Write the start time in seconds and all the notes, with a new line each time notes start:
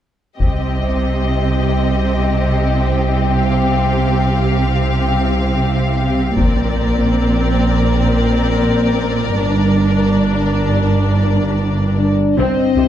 0.39 C2 C3 C4 G4 D#5, taiko
3.40 F5
6.37 A#1 A#2 C4 A#4 D5, taiko
9.36 G1 G2 D4
11.99 D4
12.37 C2 C3 C4 C5 D#5
12.76 C2 C3 G4